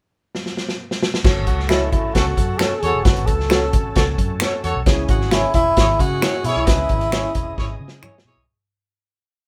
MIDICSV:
0, 0, Header, 1, 8, 480
1, 0, Start_track
1, 0, Tempo, 452830
1, 1319, Time_signature, 4, 2, 24, 8
1, 10048, End_track
2, 0, Start_track
2, 0, Title_t, "Clean electric guitar"
2, 0, Program_c, 0, 27
2, 1789, Note_on_c, 0, 66, 69
2, 1797, Note_on_c, 0, 69, 67
2, 1804, Note_on_c, 0, 73, 80
2, 1920, Note_off_c, 0, 66, 0
2, 1924, Note_off_c, 0, 69, 0
2, 1928, Note_off_c, 0, 73, 0
2, 2749, Note_on_c, 0, 66, 92
2, 2758, Note_on_c, 0, 69, 84
2, 2765, Note_on_c, 0, 73, 91
2, 2879, Note_off_c, 0, 66, 0
2, 2884, Note_off_c, 0, 69, 0
2, 2887, Note_off_c, 0, 73, 0
2, 3708, Note_on_c, 0, 66, 72
2, 3718, Note_on_c, 0, 69, 82
2, 3725, Note_on_c, 0, 73, 85
2, 3839, Note_off_c, 0, 66, 0
2, 3844, Note_off_c, 0, 69, 0
2, 3847, Note_off_c, 0, 73, 0
2, 4670, Note_on_c, 0, 66, 84
2, 4678, Note_on_c, 0, 69, 84
2, 4688, Note_on_c, 0, 73, 100
2, 4799, Note_off_c, 0, 66, 0
2, 4803, Note_off_c, 0, 69, 0
2, 4808, Note_off_c, 0, 73, 0
2, 5628, Note_on_c, 0, 64, 77
2, 5635, Note_on_c, 0, 68, 79
2, 5642, Note_on_c, 0, 73, 72
2, 5758, Note_off_c, 0, 64, 0
2, 5761, Note_off_c, 0, 68, 0
2, 5765, Note_off_c, 0, 73, 0
2, 6586, Note_on_c, 0, 64, 81
2, 6594, Note_on_c, 0, 68, 100
2, 6603, Note_on_c, 0, 73, 89
2, 6717, Note_off_c, 0, 64, 0
2, 6721, Note_off_c, 0, 68, 0
2, 6725, Note_off_c, 0, 73, 0
2, 7543, Note_on_c, 0, 64, 80
2, 7549, Note_on_c, 0, 68, 69
2, 7557, Note_on_c, 0, 73, 72
2, 7676, Note_off_c, 0, 64, 0
2, 7679, Note_off_c, 0, 68, 0
2, 7683, Note_off_c, 0, 73, 0
2, 8501, Note_on_c, 0, 64, 70
2, 8512, Note_on_c, 0, 68, 74
2, 8516, Note_on_c, 0, 73, 84
2, 8636, Note_off_c, 0, 64, 0
2, 8641, Note_off_c, 0, 68, 0
2, 8643, Note_off_c, 0, 73, 0
2, 10048, End_track
3, 0, Start_track
3, 0, Title_t, "Horn section"
3, 0, Program_c, 1, 61
3, 1794, Note_on_c, 1, 66, 72
3, 1796, Note_on_c, 1, 69, 83
3, 1800, Note_on_c, 1, 61, 80
3, 1898, Note_off_c, 1, 66, 0
3, 1899, Note_off_c, 1, 69, 0
3, 1901, Note_off_c, 1, 61, 0
3, 2281, Note_on_c, 1, 61, 74
3, 2284, Note_on_c, 1, 66, 85
3, 2284, Note_on_c, 1, 69, 87
3, 2356, Note_off_c, 1, 61, 0
3, 2359, Note_off_c, 1, 66, 0
3, 2359, Note_off_c, 1, 69, 0
3, 2760, Note_on_c, 1, 61, 76
3, 2760, Note_on_c, 1, 66, 77
3, 2762, Note_on_c, 1, 69, 80
3, 2861, Note_off_c, 1, 61, 0
3, 2861, Note_off_c, 1, 66, 0
3, 2862, Note_off_c, 1, 69, 0
3, 3003, Note_on_c, 1, 73, 92
3, 3005, Note_on_c, 1, 66, 91
3, 3008, Note_on_c, 1, 69, 80
3, 3154, Note_off_c, 1, 73, 0
3, 3155, Note_off_c, 1, 66, 0
3, 3157, Note_off_c, 1, 69, 0
3, 3715, Note_on_c, 1, 69, 78
3, 3715, Note_on_c, 1, 73, 77
3, 3717, Note_on_c, 1, 66, 81
3, 3817, Note_off_c, 1, 69, 0
3, 3817, Note_off_c, 1, 73, 0
3, 3818, Note_off_c, 1, 66, 0
3, 4191, Note_on_c, 1, 66, 73
3, 4191, Note_on_c, 1, 69, 91
3, 4194, Note_on_c, 1, 73, 90
3, 4269, Note_off_c, 1, 66, 0
3, 4269, Note_off_c, 1, 69, 0
3, 4271, Note_off_c, 1, 73, 0
3, 4679, Note_on_c, 1, 73, 93
3, 4680, Note_on_c, 1, 66, 76
3, 4681, Note_on_c, 1, 69, 66
3, 4779, Note_off_c, 1, 73, 0
3, 4780, Note_off_c, 1, 66, 0
3, 4780, Note_off_c, 1, 69, 0
3, 4921, Note_on_c, 1, 66, 81
3, 4921, Note_on_c, 1, 73, 98
3, 4925, Note_on_c, 1, 69, 80
3, 5072, Note_off_c, 1, 66, 0
3, 5072, Note_off_c, 1, 73, 0
3, 5074, Note_off_c, 1, 69, 0
3, 5641, Note_on_c, 1, 68, 75
3, 5641, Note_on_c, 1, 73, 75
3, 5642, Note_on_c, 1, 64, 74
3, 5740, Note_off_c, 1, 68, 0
3, 5740, Note_off_c, 1, 73, 0
3, 5741, Note_off_c, 1, 64, 0
3, 6120, Note_on_c, 1, 68, 86
3, 6122, Note_on_c, 1, 64, 83
3, 6124, Note_on_c, 1, 73, 90
3, 6195, Note_off_c, 1, 68, 0
3, 6196, Note_off_c, 1, 64, 0
3, 6197, Note_off_c, 1, 73, 0
3, 6605, Note_on_c, 1, 64, 76
3, 6610, Note_on_c, 1, 68, 77
3, 6610, Note_on_c, 1, 73, 81
3, 6702, Note_off_c, 1, 64, 0
3, 6705, Note_off_c, 1, 68, 0
3, 6705, Note_off_c, 1, 73, 0
3, 6841, Note_on_c, 1, 64, 95
3, 6845, Note_on_c, 1, 73, 102
3, 6848, Note_on_c, 1, 68, 84
3, 7042, Note_off_c, 1, 64, 0
3, 7045, Note_off_c, 1, 73, 0
3, 7046, Note_off_c, 1, 68, 0
3, 7562, Note_on_c, 1, 68, 70
3, 7565, Note_on_c, 1, 73, 86
3, 7568, Note_on_c, 1, 64, 72
3, 7661, Note_off_c, 1, 68, 0
3, 7663, Note_off_c, 1, 73, 0
3, 7665, Note_off_c, 1, 64, 0
3, 8032, Note_on_c, 1, 64, 76
3, 8033, Note_on_c, 1, 68, 81
3, 8034, Note_on_c, 1, 73, 82
3, 8110, Note_off_c, 1, 64, 0
3, 8110, Note_off_c, 1, 68, 0
3, 8111, Note_off_c, 1, 73, 0
3, 8514, Note_on_c, 1, 64, 74
3, 8514, Note_on_c, 1, 68, 68
3, 8517, Note_on_c, 1, 73, 76
3, 8617, Note_off_c, 1, 64, 0
3, 8617, Note_off_c, 1, 68, 0
3, 8619, Note_off_c, 1, 73, 0
3, 8763, Note_on_c, 1, 64, 77
3, 8766, Note_on_c, 1, 73, 83
3, 8767, Note_on_c, 1, 68, 76
3, 8914, Note_off_c, 1, 64, 0
3, 8916, Note_off_c, 1, 73, 0
3, 8917, Note_off_c, 1, 68, 0
3, 10048, End_track
4, 0, Start_track
4, 0, Title_t, "Grand piano"
4, 0, Program_c, 2, 0
4, 1323, Note_on_c, 2, 66, 67
4, 1323, Note_on_c, 2, 69, 73
4, 1323, Note_on_c, 2, 73, 81
4, 1324, Note_on_c, 2, 61, 75
4, 1662, Note_off_c, 2, 61, 0
4, 1662, Note_off_c, 2, 66, 0
4, 1662, Note_off_c, 2, 69, 0
4, 1662, Note_off_c, 2, 73, 0
4, 1800, Note_on_c, 2, 69, 55
4, 1801, Note_on_c, 2, 61, 64
4, 1801, Note_on_c, 2, 66, 59
4, 1802, Note_on_c, 2, 75, 67
4, 2482, Note_off_c, 2, 61, 0
4, 2482, Note_off_c, 2, 66, 0
4, 2482, Note_off_c, 2, 69, 0
4, 2483, Note_off_c, 2, 75, 0
4, 3233, Note_on_c, 2, 61, 63
4, 3234, Note_on_c, 2, 66, 62
4, 3234, Note_on_c, 2, 71, 71
4, 3238, Note_on_c, 2, 69, 69
4, 3576, Note_off_c, 2, 61, 0
4, 3576, Note_off_c, 2, 66, 0
4, 3577, Note_off_c, 2, 71, 0
4, 3579, Note_off_c, 2, 69, 0
4, 3711, Note_on_c, 2, 73, 74
4, 3712, Note_on_c, 2, 61, 68
4, 3712, Note_on_c, 2, 69, 59
4, 3715, Note_on_c, 2, 66, 64
4, 4396, Note_off_c, 2, 73, 0
4, 4397, Note_off_c, 2, 61, 0
4, 4397, Note_off_c, 2, 69, 0
4, 4398, Note_off_c, 2, 66, 0
4, 5155, Note_on_c, 2, 73, 88
4, 5156, Note_on_c, 2, 64, 81
4, 5157, Note_on_c, 2, 61, 85
4, 5158, Note_on_c, 2, 49, 80
4, 5160, Note_on_c, 2, 68, 76
4, 5496, Note_off_c, 2, 73, 0
4, 5497, Note_off_c, 2, 61, 0
4, 5497, Note_off_c, 2, 64, 0
4, 5499, Note_off_c, 2, 68, 0
4, 5632, Note_on_c, 2, 61, 62
4, 5632, Note_on_c, 2, 64, 57
4, 5632, Note_on_c, 2, 68, 65
4, 5633, Note_on_c, 2, 73, 78
4, 5834, Note_off_c, 2, 49, 0
4, 6316, Note_off_c, 2, 61, 0
4, 6316, Note_off_c, 2, 64, 0
4, 6316, Note_off_c, 2, 68, 0
4, 6317, Note_off_c, 2, 73, 0
4, 7071, Note_on_c, 2, 61, 68
4, 7073, Note_on_c, 2, 49, 59
4, 7074, Note_on_c, 2, 68, 63
4, 7074, Note_on_c, 2, 71, 77
4, 7077, Note_on_c, 2, 63, 52
4, 7130, Note_on_c, 2, 64, 64
4, 7133, Note_off_c, 2, 63, 0
4, 7415, Note_off_c, 2, 61, 0
4, 7416, Note_off_c, 2, 68, 0
4, 7416, Note_off_c, 2, 71, 0
4, 7444, Note_off_c, 2, 64, 0
4, 7554, Note_on_c, 2, 68, 71
4, 7554, Note_on_c, 2, 73, 95
4, 7555, Note_on_c, 2, 61, 85
4, 7557, Note_on_c, 2, 64, 77
4, 7752, Note_off_c, 2, 49, 0
4, 8238, Note_off_c, 2, 68, 0
4, 8238, Note_off_c, 2, 73, 0
4, 8239, Note_off_c, 2, 61, 0
4, 8240, Note_off_c, 2, 64, 0
4, 10048, End_track
5, 0, Start_track
5, 0, Title_t, "Tenor saxophone"
5, 0, Program_c, 3, 66
5, 1563, Note_on_c, 3, 66, 75
5, 1784, Note_off_c, 3, 66, 0
5, 1794, Note_on_c, 3, 64, 79
5, 2019, Note_off_c, 3, 64, 0
5, 2037, Note_on_c, 3, 64, 77
5, 2264, Note_on_c, 3, 66, 89
5, 2280, Note_off_c, 3, 64, 0
5, 2740, Note_on_c, 3, 69, 91
5, 2755, Note_off_c, 3, 66, 0
5, 2970, Note_on_c, 3, 68, 84
5, 2985, Note_off_c, 3, 69, 0
5, 3213, Note_on_c, 3, 66, 82
5, 3229, Note_off_c, 3, 68, 0
5, 3460, Note_on_c, 3, 69, 104
5, 3476, Note_off_c, 3, 66, 0
5, 4427, Note_off_c, 3, 69, 0
5, 5405, Note_on_c, 3, 66, 92
5, 5642, Note_on_c, 3, 64, 107
5, 5658, Note_off_c, 3, 66, 0
5, 5878, Note_off_c, 3, 64, 0
5, 5883, Note_on_c, 3, 64, 95
5, 6364, Note_on_c, 3, 66, 104
5, 6380, Note_off_c, 3, 64, 0
5, 6844, Note_on_c, 3, 64, 101
5, 6860, Note_off_c, 3, 66, 0
5, 8521, Note_off_c, 3, 64, 0
5, 10048, End_track
6, 0, Start_track
6, 0, Title_t, "Tonewheel organ"
6, 0, Program_c, 4, 16
6, 1323, Note_on_c, 4, 57, 48
6, 1323, Note_on_c, 4, 69, 62
6, 1326, Note_on_c, 4, 61, 55
6, 1328, Note_on_c, 4, 54, 53
6, 5119, Note_off_c, 4, 57, 0
6, 5119, Note_off_c, 4, 69, 0
6, 5120, Note_off_c, 4, 61, 0
6, 5121, Note_off_c, 4, 54, 0
6, 5170, Note_on_c, 4, 68, 63
6, 5172, Note_on_c, 4, 52, 58
6, 5173, Note_on_c, 4, 56, 56
6, 5173, Note_on_c, 4, 61, 60
6, 7064, Note_off_c, 4, 61, 0
6, 7075, Note_on_c, 4, 75, 56
6, 8966, Note_off_c, 4, 68, 0
6, 8967, Note_off_c, 4, 52, 0
6, 8968, Note_off_c, 4, 56, 0
6, 8978, Note_off_c, 4, 75, 0
6, 10048, End_track
7, 0, Start_track
7, 0, Title_t, "Fingered electric bass"
7, 0, Program_c, 5, 33
7, 1317, Note_on_c, 5, 30, 100
7, 1556, Note_off_c, 5, 30, 0
7, 1556, Note_on_c, 5, 37, 78
7, 2044, Note_off_c, 5, 37, 0
7, 2044, Note_on_c, 5, 33, 77
7, 2227, Note_off_c, 5, 33, 0
7, 2280, Note_on_c, 5, 37, 79
7, 2465, Note_off_c, 5, 37, 0
7, 2512, Note_on_c, 5, 42, 89
7, 2793, Note_off_c, 5, 42, 0
7, 2996, Note_on_c, 5, 40, 84
7, 3089, Note_off_c, 5, 40, 0
7, 3116, Note_on_c, 5, 28, 81
7, 3209, Note_off_c, 5, 28, 0
7, 3236, Note_on_c, 5, 30, 97
7, 3471, Note_off_c, 5, 30, 0
7, 3471, Note_on_c, 5, 37, 81
7, 3958, Note_off_c, 5, 37, 0
7, 3958, Note_on_c, 5, 33, 72
7, 4143, Note_off_c, 5, 33, 0
7, 4201, Note_on_c, 5, 37, 87
7, 4385, Note_off_c, 5, 37, 0
7, 4434, Note_on_c, 5, 42, 89
7, 4713, Note_off_c, 5, 42, 0
7, 4917, Note_on_c, 5, 40, 76
7, 5009, Note_off_c, 5, 40, 0
7, 5038, Note_on_c, 5, 35, 78
7, 5130, Note_off_c, 5, 35, 0
7, 5154, Note_on_c, 5, 37, 95
7, 5340, Note_off_c, 5, 37, 0
7, 5393, Note_on_c, 5, 32, 77
7, 5766, Note_off_c, 5, 32, 0
7, 5876, Note_on_c, 5, 28, 83
7, 6061, Note_off_c, 5, 28, 0
7, 6119, Note_on_c, 5, 32, 89
7, 6303, Note_off_c, 5, 32, 0
7, 6353, Note_on_c, 5, 49, 100
7, 6633, Note_off_c, 5, 49, 0
7, 6829, Note_on_c, 5, 47, 88
7, 6924, Note_off_c, 5, 47, 0
7, 6949, Note_on_c, 5, 35, 90
7, 7044, Note_off_c, 5, 35, 0
7, 7070, Note_on_c, 5, 37, 102
7, 7258, Note_off_c, 5, 37, 0
7, 7310, Note_on_c, 5, 32, 79
7, 7684, Note_off_c, 5, 32, 0
7, 7794, Note_on_c, 5, 28, 67
7, 7981, Note_off_c, 5, 28, 0
7, 8032, Note_on_c, 5, 32, 74
7, 8220, Note_off_c, 5, 32, 0
7, 8270, Note_on_c, 5, 49, 92
7, 8552, Note_off_c, 5, 49, 0
7, 8743, Note_on_c, 5, 47, 76
7, 8841, Note_off_c, 5, 47, 0
7, 8863, Note_on_c, 5, 35, 78
7, 8961, Note_off_c, 5, 35, 0
7, 10048, End_track
8, 0, Start_track
8, 0, Title_t, "Drums"
8, 367, Note_on_c, 9, 38, 54
8, 473, Note_off_c, 9, 38, 0
8, 487, Note_on_c, 9, 38, 46
8, 593, Note_off_c, 9, 38, 0
8, 608, Note_on_c, 9, 38, 64
8, 714, Note_off_c, 9, 38, 0
8, 727, Note_on_c, 9, 38, 61
8, 833, Note_off_c, 9, 38, 0
8, 966, Note_on_c, 9, 38, 73
8, 1072, Note_off_c, 9, 38, 0
8, 1087, Note_on_c, 9, 38, 102
8, 1193, Note_off_c, 9, 38, 0
8, 1208, Note_on_c, 9, 38, 90
8, 1314, Note_off_c, 9, 38, 0
8, 1319, Note_on_c, 9, 36, 115
8, 1319, Note_on_c, 9, 49, 80
8, 1328, Note_on_c, 9, 38, 95
8, 1425, Note_off_c, 9, 36, 0
8, 1425, Note_off_c, 9, 49, 0
8, 1434, Note_off_c, 9, 38, 0
8, 1556, Note_on_c, 9, 42, 59
8, 1557, Note_on_c, 9, 36, 79
8, 1662, Note_off_c, 9, 42, 0
8, 1663, Note_off_c, 9, 36, 0
8, 1692, Note_on_c, 9, 38, 31
8, 1792, Note_on_c, 9, 26, 81
8, 1798, Note_off_c, 9, 38, 0
8, 1804, Note_on_c, 9, 42, 68
8, 1810, Note_on_c, 9, 38, 97
8, 1898, Note_off_c, 9, 26, 0
8, 1910, Note_off_c, 9, 42, 0
8, 1916, Note_off_c, 9, 38, 0
8, 2039, Note_on_c, 9, 42, 64
8, 2041, Note_on_c, 9, 36, 83
8, 2145, Note_off_c, 9, 42, 0
8, 2147, Note_off_c, 9, 36, 0
8, 2277, Note_on_c, 9, 42, 69
8, 2281, Note_on_c, 9, 36, 81
8, 2287, Note_on_c, 9, 38, 101
8, 2383, Note_off_c, 9, 42, 0
8, 2387, Note_off_c, 9, 36, 0
8, 2393, Note_off_c, 9, 38, 0
8, 2515, Note_on_c, 9, 36, 82
8, 2518, Note_on_c, 9, 42, 69
8, 2621, Note_off_c, 9, 36, 0
8, 2624, Note_off_c, 9, 42, 0
8, 2749, Note_on_c, 9, 26, 94
8, 2760, Note_on_c, 9, 42, 66
8, 2764, Note_on_c, 9, 38, 95
8, 2855, Note_off_c, 9, 26, 0
8, 2866, Note_off_c, 9, 42, 0
8, 2870, Note_off_c, 9, 38, 0
8, 2995, Note_on_c, 9, 42, 72
8, 3101, Note_off_c, 9, 42, 0
8, 3232, Note_on_c, 9, 42, 80
8, 3235, Note_on_c, 9, 36, 107
8, 3241, Note_on_c, 9, 38, 95
8, 3338, Note_off_c, 9, 42, 0
8, 3341, Note_off_c, 9, 36, 0
8, 3347, Note_off_c, 9, 38, 0
8, 3352, Note_on_c, 9, 42, 45
8, 3458, Note_off_c, 9, 42, 0
8, 3469, Note_on_c, 9, 42, 58
8, 3473, Note_on_c, 9, 36, 80
8, 3575, Note_off_c, 9, 42, 0
8, 3579, Note_off_c, 9, 36, 0
8, 3604, Note_on_c, 9, 38, 33
8, 3709, Note_on_c, 9, 26, 79
8, 3710, Note_off_c, 9, 38, 0
8, 3717, Note_on_c, 9, 42, 71
8, 3723, Note_on_c, 9, 38, 116
8, 3815, Note_off_c, 9, 26, 0
8, 3823, Note_off_c, 9, 42, 0
8, 3829, Note_off_c, 9, 38, 0
8, 3955, Note_on_c, 9, 42, 69
8, 3959, Note_on_c, 9, 36, 96
8, 4061, Note_off_c, 9, 42, 0
8, 4065, Note_off_c, 9, 36, 0
8, 4193, Note_on_c, 9, 42, 83
8, 4200, Note_on_c, 9, 36, 85
8, 4203, Note_on_c, 9, 38, 108
8, 4299, Note_off_c, 9, 42, 0
8, 4306, Note_off_c, 9, 36, 0
8, 4309, Note_off_c, 9, 38, 0
8, 4434, Note_on_c, 9, 36, 78
8, 4437, Note_on_c, 9, 42, 66
8, 4540, Note_off_c, 9, 36, 0
8, 4543, Note_off_c, 9, 42, 0
8, 4663, Note_on_c, 9, 26, 108
8, 4679, Note_on_c, 9, 42, 78
8, 4684, Note_on_c, 9, 38, 97
8, 4769, Note_off_c, 9, 26, 0
8, 4785, Note_off_c, 9, 42, 0
8, 4790, Note_off_c, 9, 38, 0
8, 4916, Note_on_c, 9, 42, 74
8, 5022, Note_off_c, 9, 42, 0
8, 5153, Note_on_c, 9, 42, 90
8, 5156, Note_on_c, 9, 36, 107
8, 5162, Note_on_c, 9, 38, 99
8, 5259, Note_off_c, 9, 42, 0
8, 5262, Note_off_c, 9, 36, 0
8, 5268, Note_off_c, 9, 38, 0
8, 5389, Note_on_c, 9, 42, 59
8, 5393, Note_on_c, 9, 36, 89
8, 5495, Note_off_c, 9, 42, 0
8, 5499, Note_off_c, 9, 36, 0
8, 5521, Note_on_c, 9, 38, 30
8, 5627, Note_off_c, 9, 38, 0
8, 5631, Note_on_c, 9, 42, 75
8, 5633, Note_on_c, 9, 26, 68
8, 5637, Note_on_c, 9, 38, 114
8, 5737, Note_off_c, 9, 42, 0
8, 5739, Note_off_c, 9, 26, 0
8, 5743, Note_off_c, 9, 38, 0
8, 5870, Note_on_c, 9, 42, 70
8, 5876, Note_on_c, 9, 36, 84
8, 5976, Note_off_c, 9, 42, 0
8, 5982, Note_off_c, 9, 36, 0
8, 6112, Note_on_c, 9, 42, 77
8, 6118, Note_on_c, 9, 36, 82
8, 6123, Note_on_c, 9, 38, 114
8, 6218, Note_off_c, 9, 42, 0
8, 6224, Note_off_c, 9, 36, 0
8, 6229, Note_off_c, 9, 38, 0
8, 6354, Note_on_c, 9, 36, 82
8, 6360, Note_on_c, 9, 42, 70
8, 6460, Note_off_c, 9, 36, 0
8, 6466, Note_off_c, 9, 42, 0
8, 6594, Note_on_c, 9, 42, 78
8, 6597, Note_on_c, 9, 26, 90
8, 6599, Note_on_c, 9, 38, 89
8, 6700, Note_off_c, 9, 42, 0
8, 6703, Note_off_c, 9, 26, 0
8, 6705, Note_off_c, 9, 38, 0
8, 6830, Note_on_c, 9, 42, 68
8, 6936, Note_off_c, 9, 42, 0
8, 7068, Note_on_c, 9, 42, 91
8, 7073, Note_on_c, 9, 36, 102
8, 7078, Note_on_c, 9, 38, 102
8, 7174, Note_off_c, 9, 42, 0
8, 7179, Note_off_c, 9, 36, 0
8, 7184, Note_off_c, 9, 38, 0
8, 7303, Note_on_c, 9, 42, 51
8, 7310, Note_on_c, 9, 36, 77
8, 7409, Note_off_c, 9, 42, 0
8, 7416, Note_off_c, 9, 36, 0
8, 7429, Note_on_c, 9, 42, 43
8, 7535, Note_off_c, 9, 42, 0
8, 7550, Note_on_c, 9, 26, 79
8, 7550, Note_on_c, 9, 42, 79
8, 7556, Note_on_c, 9, 38, 107
8, 7656, Note_off_c, 9, 26, 0
8, 7656, Note_off_c, 9, 42, 0
8, 7662, Note_off_c, 9, 38, 0
8, 7787, Note_on_c, 9, 42, 69
8, 7794, Note_on_c, 9, 36, 84
8, 7893, Note_off_c, 9, 42, 0
8, 7900, Note_off_c, 9, 36, 0
8, 8034, Note_on_c, 9, 36, 86
8, 8039, Note_on_c, 9, 38, 48
8, 8140, Note_off_c, 9, 36, 0
8, 8145, Note_off_c, 9, 38, 0
8, 8353, Note_on_c, 9, 38, 67
8, 8459, Note_off_c, 9, 38, 0
8, 8509, Note_on_c, 9, 26, 102
8, 8513, Note_on_c, 9, 45, 65
8, 8615, Note_off_c, 9, 26, 0
8, 8619, Note_off_c, 9, 45, 0
8, 8674, Note_on_c, 9, 38, 88
8, 8780, Note_off_c, 9, 38, 0
8, 10048, End_track
0, 0, End_of_file